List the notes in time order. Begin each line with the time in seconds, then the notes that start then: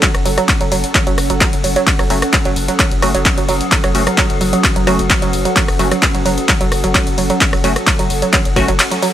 Already playing: C#4 A4 F#5
0.02 F#3, kick, clap, closed hi-hat, ride
0.15 F#1, cross-stick, closed hi-hat
0.26 F#1 F#3, open hi-hat
0.38 F#3, cross-stick, closed hi-hat
0.49 kick, clap, closed hi-hat, ride
0.61 F#1 F#3, closed hi-hat
0.72 F#1 F#3, open hi-hat
0.84 closed hi-hat
0.95 F#3, kick, clap, closed hi-hat, ride
1.07 F#1 F#3, closed hi-hat
1.18 F#1, cross-stick, open hi-hat
1.30 F#1 F#3, closed hi-hat
1.41 F#3, kick, clap, closed hi-hat, ride
1.53 F#1, closed hi-hat
1.64 F#1 F#3, open hi-hat
1.76 F#3, closed hi-hat
1.87 F#3, kick, clap, closed hi-hat, ride
1.99 F#1 F#3, cross-stick, open hi-hat
2.10 F#1 F#3 A3 C#4 F#4, open hi-hat
2.22 cross-stick, closed hi-hat
2.33 F#3, kick, clap, closed hi-hat, ride
2.45 F#1 F#3, closed hi-hat
2.56 F#1, open hi-hat
2.68 F#3, closed hi-hat
2.79 F#3, kick, clap, closed hi-hat, ride
2.91 F#1, closed hi-hat
3.02 F#1 F#3 A3 C#4 F#4, cross-stick, open hi-hat
3.15 F#1 F#3, closed hi-hat
3.26 kick, clap, closed hi-hat, ride
3.38 F#1 F#3, closed hi-hat
3.49 F#1 F#3, open hi-hat
3.61 closed hi-hat
3.72 F#3, kick, clap, closed hi-hat, ride
3.84 F#1 F#3, cross-stick, closed hi-hat
3.95 F#1 A3 C#4 F#4, open hi-hat
4.07 F#3, cross-stick, closed hi-hat
4.18 F#3, kick, clap, closed hi-hat, ride
4.30 F#1, closed hi-hat
4.41 F#1 F#3, open hi-hat
4.53 F#3, closed hi-hat
4.64 kick, clap, closed hi-hat, ride
4.76 F#1 F#3, closed hi-hat
4.87 F#1 F#3 A3 C#4 F#4, cross-stick, open hi-hat
4.99 F#1, closed hi-hat
5.10 F#3, kick, clap, closed hi-hat, ride
5.22 F#1 F#3, closed hi-hat
5.33 F#1, open hi-hat
5.45 F#3, closed hi-hat
5.56 F#3, kick, clap, closed hi-hat, ride
5.68 F#1, cross-stick, open hi-hat
5.79 F#1 F#3 A3 C#4 F#4, open hi-hat
5.91 F#3, cross-stick, closed hi-hat
6.02 kick, clap, closed hi-hat, ride
6.15 F#1 F#3, closed hi-hat
6.25 F#1 F#3, open hi-hat
6.38 closed hi-hat
6.49 F#3, kick, clap, closed hi-hat, ride
6.61 F#1 F#3, closed hi-hat
6.72 F#1, cross-stick, open hi-hat
6.84 F#1 F#3, closed hi-hat
6.95 F#3, kick, clap, closed hi-hat, ride
7.07 F#1, closed hi-hat
7.18 F#1 F#3, open hi-hat
7.30 F#3, closed hi-hat
7.41 kick, clap, closed hi-hat, ride
7.53 F#1 F#3, cross-stick, open hi-hat
7.64 F#1 F#3 A3 C#4 F#4, open hi-hat
7.76 cross-stick, closed hi-hat
7.87 F#3, kick, clap, closed hi-hat, ride
7.99 F#1 F#3, closed hi-hat
8.10 F#1, open hi-hat
8.22 F#3, closed hi-hat
8.33 F#3, kick, clap, closed hi-hat, ride
8.45 F#1, closed hi-hat
8.56 F#1 F#3 A3 C#4 F#4, kick, cross-stick, open hi-hat
8.68 F#1 F#3, closed hi-hat
8.79 clap, closed hi-hat, ride
8.91 F#3, closed hi-hat
9.02 F#3, open hi-hat